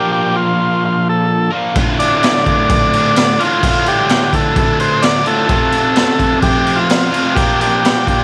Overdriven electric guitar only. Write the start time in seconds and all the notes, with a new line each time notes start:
Already playing: A#2 F3 A#3 D4 F4 A#4
1.50 D4 F4 A#4
1.55 A#2 F3 A#3
1.74 D2 A2 D3 A3
1.80 F4
3.39 A2 D3 A3 F4
3.45 D2
3.61 D2 A2 D3
3.66 A3 F4
5.25 D3 A3 F4
5.29 D2 A2
5.48 F2 C3 F3 A3
5.52 C4 F4
7.11 F3 A3 C4 F4
7.15 F2 C3
7.35 A#2 F3 A#3 D4
7.39 F4 A#4